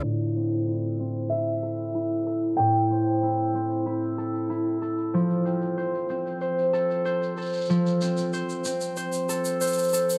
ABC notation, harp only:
X:1
M:4/4
L:1/8
Q:1/4=94
K:Aphr
V:1 name="Harp"
A,, C E C E A E A | A,, C E C E A E A | F, C c C c A c A | F, C c C c A c A |]